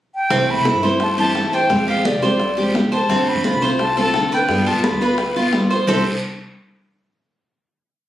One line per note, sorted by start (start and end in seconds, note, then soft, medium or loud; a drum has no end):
0.15 0.52 G5 medium
0.30 0.55 C2 medium
0.30 0.65 C3 medium
0.30 0.64 E3 medium
0.30 0.65 A3 medium
0.30 0.65 C4 medium
0.30 0.65 E4 medium
0.30 high bongo medium
0.30 high conga soft
0.30 long guiro medium
0.48 0.84 B5 loud
0.48 high conga soft
0.57 0.73 C3 medium
0.65 0.82 E3 soft
0.65 0.82 A3 medium
0.65 0.82 C4 soft
0.65 0.82 E4 medium
0.65 0.81 E4 medium
0.65 high bongo medium
0.65 high conga medium
0.65 short guiro medium
0.74 1.41 G2 medium
0.83 0.99 E3 medium
0.83 0.99 A3 medium
0.83 0.99 C4 medium
0.83 0.99 E4 medium
0.83 1.17 C5 medium
0.83 high conga soft
0.83 short guiro medium
1.00 1.09 A5 medium
1.00 muted steel-string acoustic guitar stroke medium
1.00 high bongo medium
1.00 high conga soft
1.00 long guiro medium
1.17 1.34 E3 medium
1.17 1.34 A3 medium
1.17 1.34 C4 medium
1.17 1.35 E4 medium
1.17 1.52 G4 medium
1.17 1.56 A5 loud
1.17 high conga soft
1.35 1.69 E3 medium
1.35 1.70 A3 medium
1.35 1.69 C4 medium
1.35 1.70 E4 medium
1.35 high bongo medium
1.35 low bongo medium
1.35 high conga soft
1.35 short guiro medium
1.53 1.87 C5 medium
1.53 1.88 G5 loud
1.53 high conga soft
1.53 short guiro medium
1.69 1.95 F2 medium
1.69 2.04 C3 medium
1.69 2.04 F3 medium
1.69 2.04 G#3 medium
1.69 2.04 C4 medium
1.69 2.05 G4 medium
1.69 high bongo medium
1.69 high conga soft
1.69 long guiro medium
1.87 2.22 G4 medium
1.87 2.08 F5 medium
1.87 high bongo soft
1.87 high conga soft
1.96 2.13 F3 medium
2.05 2.22 F3 soft
2.05 2.22 G#3 soft
2.05 2.22 C4 medium
2.05 2.21 G4 medium
2.05 2.75 D5 medium
2.05 high bongo medium
2.05 high conga loud
2.05 short guiro medium
2.13 2.80 C2 medium
2.22 2.39 F3 medium
2.22 2.40 G#3 medium
2.22 2.40 C4 medium
2.22 2.39 G4 medium
2.22 2.56 C5 medium
2.22 high bongo soft
2.22 high conga soft
2.22 short guiro medium
2.40 muted steel-string acoustic guitar stroke medium
2.40 high bongo medium
2.40 high conga soft
2.40 long guiro medium
2.57 2.74 F3 medium
2.57 2.75 G#3 medium
2.57 2.75 C4 medium
2.57 2.91 G4 medium
2.57 2.74 G4 medium
2.57 high conga soft
2.74 3.09 F3 medium
2.74 3.10 G#3 medium
2.74 3.10 C4 medium
2.74 3.10 G4 medium
2.74 high bongo medium
2.74 low bongo medium
2.74 high conga medium
2.74 short guiro medium
2.92 3.09 C5 medium
2.92 3.30 A5 medium
2.92 high bongo soft
2.92 high conga soft
2.92 short guiro medium
3.09 3.34 F2 medium
3.09 3.44 D3 medium
3.09 3.44 A3 medium
3.09 3.43 C4 medium
3.09 3.44 C4 medium
3.09 3.45 F4 medium
3.09 high bongo medium
3.09 high conga soft
3.09 long guiro medium
3.27 3.63 B5 loud
3.27 high conga soft
3.35 3.52 F3 medium
3.44 3.61 D3 medium
3.44 3.62 A3 soft
3.44 3.62 C4 medium
3.44 3.62 F4 medium
3.44 3.61 F4 soft
3.44 high bongo medium
3.44 high conga medium
3.44 short guiro medium
3.53 4.19 C2 medium
3.61 3.79 A3 medium
3.61 3.79 C4 medium
3.61 3.79 F4 medium
3.61 3.96 C5 medium
3.61 high conga soft
3.61 short guiro medium
3.79 3.96 A5 medium
3.79 muted steel-string acoustic guitar stroke medium
3.79 high bongo medium
3.79 high conga soft
3.79 long guiro medium
3.97 4.14 A3 medium
3.97 4.14 C4 medium
3.97 4.14 F4 medium
3.97 4.31 A4 medium
3.97 4.30 A5 loud
3.97 high conga soft
4.14 4.49 D3 medium
4.14 4.49 A3 soft
4.14 4.49 C4 medium
4.14 4.49 F4 medium
4.14 high bongo medium
4.14 low bongo medium
4.14 high conga soft
4.14 short guiro medium
4.31 4.66 B4 medium
4.31 4.69 G5 loud
4.31 high conga soft
4.31 short guiro medium
4.49 4.74 G2 medium
4.49 4.83 G3 medium
4.49 4.83 B3 medium
4.49 4.84 F4 medium
4.49 high bongo medium
4.49 high conga soft
4.49 long guiro medium
4.66 5.00 F4 medium
4.66 4.86 A5 medium
4.66 high bongo soft
4.66 high conga soft
4.74 4.91 G3 medium
4.84 5.00 G3 soft
4.84 5.01 B3 soft
4.84 5.00 F4 medium
4.84 5.53 B5 medium
4.84 high bongo medium
4.84 high conga medium
4.84 short guiro medium
4.91 5.58 D2 medium
5.01 5.18 B3 medium
5.01 5.18 F4 medium
5.01 5.35 B4 medium
5.01 high bongo soft
5.01 high conga soft
5.01 short guiro medium
5.18 muted steel-string acoustic guitar stroke medium
5.18 high bongo medium
5.18 high conga soft
5.18 long guiro medium
5.36 5.53 B3 medium
5.36 5.53 F4 medium
5.36 5.70 F4 medium
5.36 high conga soft
5.53 5.87 G3 soft
5.53 5.88 B3 soft
5.53 5.88 F4 soft
5.53 high bongo medium
5.53 low bongo medium
5.53 high conga medium
5.53 short guiro medium
5.71 5.87 C5 medium
5.71 high bongo soft
5.71 short guiro medium
5.87 6.04 C2 medium
5.87 6.02 C3 medium
5.87 6.02 E3 medium
5.87 6.02 A3 medium
5.87 6.04 C4 medium
5.87 6.02 C4 medium
5.87 6.03 E4 medium
5.87 6.04 G4 medium
5.87 6.04 A4 medium
5.87 6.05 C6 medium
5.87 low bongo loud
5.87 low conga medium
5.87 long guiro medium